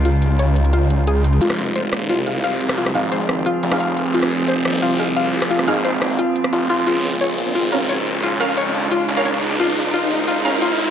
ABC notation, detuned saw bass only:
X:1
M:4/4
L:1/8
Q:1/4=176
K:Fm
V:1 name="Detuned saw bass" clef=bass
D,,8 | F,,,3 E,,, C,,4- | C,, A,,,3 z F,,,3 | F,,,3 E,,, C,,4- |
C,, A,,,3 z2 F,,,2 | D,,3 B,,, A,,,4- | A,,, F,,3 z D,,3 | D,,3 B,,, A,,,4 |]